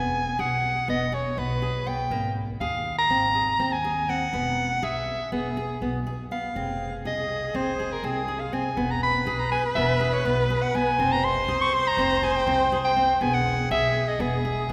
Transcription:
Already playing: upright bass E1, nylon-string guitar B3, soprano saxophone G#5
0.39 upright bass B1, nylon-string guitar G#4, soprano saxophone F#5
0.88 upright bass E1, nylon-string guitar B3, soprano saxophone D#5
1.12 nylon-string guitar G#4, soprano saxophone C#5
1.37 upright bass B1, nylon-string guitar B3, soprano saxophone B4
1.62 nylon-string guitar G#4
1.87 nylon-string guitar B3, soprano saxophone G5
2.11 upright bass G#1, nylon-string guitar A#3
2.60 upright bass D#2, nylon-string guitar G#4, soprano saxophone F5
2.98 soprano saxophone A#5
3.10 upright bass G#1, nylon-string guitar C4
3.35 nylon-string guitar G#4
3.59 upright bass D#2, nylon-string guitar C4
3.72 soprano saxophone G#5
3.84 nylon-string guitar G#4
4.09 nylon-string guitar C4, soprano saxophone F#5
4.33 upright bass E1, nylon-string guitar B3
4.82 upright bass B1, nylon-string guitar G#4, soprano saxophone E5
5.32 upright bass E1, nylon-string guitar B3, soprano saxophone G#4
5.57 nylon-string guitar G#4
5.81 upright bass B1, nylon-string guitar B3
6.07 nylon-string guitar G#4
6.31 nylon-string guitar B3, soprano saxophone F5
6.54 upright bass F1, nylon-string guitar C4, viola G#4
7.05 upright bass C2, nylon-string guitar G#4, soprano saxophone D#5
7.54 upright bass F1, nylon-string guitar C4, soprano saxophone C5
7.80 nylon-string guitar G#4
7.92 soprano saxophone A#4
8.03 upright bass C2, nylon-string guitar C4, soprano saxophone G#4
8.28 nylon-string guitar G#4
8.40 soprano saxophone F5
8.53 nylon-string guitar C4, soprano saxophone G#5
8.77 upright bass E1, nylon-string guitar B3, viola B4
8.91 soprano saxophone A#5
9.03 soprano saxophone B5
9.26 upright bass B1, nylon-string guitar G#4
9.39 soprano saxophone A#5
9.52 soprano saxophone G#5
9.75 upright bass E1, nylon-string guitar B3, soprano saxophone E5
10.00 nylon-string guitar G#4
10.13 soprano saxophone C#5
10.25 upright bass B1, nylon-string guitar B3, soprano saxophone B4
10.50 nylon-string guitar G#4
10.62 soprano saxophone F#5
10.75 nylon-string guitar B3, soprano saxophone G#5
10.98 upright bass F1, nylon-string guitar C4, viola C5
11.12 soprano saxophone A#5
11.24 soprano saxophone C6
11.48 upright bass C2, nylon-string guitar G#4
11.61 soprano saxophone C#6
11.74 soprano saxophone C6
11.87 soprano saxophone A#5
11.97 upright bass F1, nylon-string guitar C4
12.23 nylon-string guitar G#4, soprano saxophone G#5
12.36 soprano saxophone G5
12.47 upright bass C2, nylon-string guitar C4
12.72 nylon-string guitar G#4
12.85 soprano saxophone G5
12.96 nylon-string guitar C4
13.21 upright bass E1, nylon-string guitar B3, viola G#4, soprano saxophone G#5
13.34 soprano saxophone F#5
13.70 upright bass B1, nylon-string guitar G#4, soprano saxophone E5
14.08 soprano saxophone D#5
14.19 upright bass E1, nylon-string guitar B3, soprano saxophone G#4
14.45 nylon-string guitar G#4
14.69 upright bass B1, nylon-string guitar B3

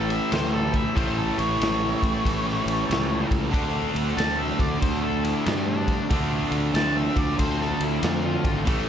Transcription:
Already playing: fingered electric bass A1, distorted electric guitar A2 E3 A3, tonewheel organ A3 C#4 G4
0.10 lead electric guitar E5, ride
0.32 fingered electric bass D2, lead electric guitar C5, snare, ride
0.53 lead electric guitar A4
0.74 lead electric guitar E5, kick, ride
0.95 fingered electric bass A1, distorted electric guitar A2 E3 A3, tonewheel organ C#4 G4 A4, lead electric guitar C5, kick, ride
1.18 lead electric guitar A4
1.38 fingered electric bass A1, lead electric guitar C#5, ride
1.60 fingered electric bass A1, snare, ride
2.03 fingered electric bass A1, kick, ride
2.25 fingered electric bass A1, kick, ride
2.49 snare
2.66 fingered electric bass A1, ride
2.90 fingered electric bass C#2, snare, ride
3.31 fingered electric bass C#2, kick, ride
3.51 fingered electric bass D2, distorted electric guitar D3 A3 D4, tonewheel organ C4 D4 F#4, kick, ride
3.95 fingered electric bass D2, ride
4.17 fingered electric bass D2, lead electric guitar A5, snare, ride
4.39 lead electric guitar E5
4.59 fingered electric bass D2, lead electric guitar D5, kick, ride
4.81 fingered electric bass D2, lead electric guitar C5, kick, ride
5.03 lead electric guitar A4
5.24 lead electric guitar E4, ride
5.46 fingered electric bass G2, lead electric guitar D4, snare, ride
5.69 lead electric guitar D4
5.88 kick, ride
6.10 fingered electric bass D2, distorted electric guitar D3 A3 D4, tonewheel organ C4 D4 F4, kick, ride
6.51 fingered electric bass D2, ride
6.74 fingered electric bass D2, lead electric guitar A5, snare, ride
6.97 lead electric guitar E5
7.16 fingered electric bass D2, lead electric guitar D5, kick, ride
7.38 fingered electric bass D2, lead electric guitar C5, kick, ride
7.62 lead electric guitar A4, snare
7.80 fingered electric bass D2, lead electric guitar E4, ride
8.03 fingered electric bass F2, lead electric guitar D4, snare, ride
8.25 lead electric guitar F4
8.45 fingered electric bass G#1, kick, ride
8.66 fingered electric bass A1, distorted electric guitar A2 E3 A3, tonewheel organ A3 C#4 G4, kick, ride

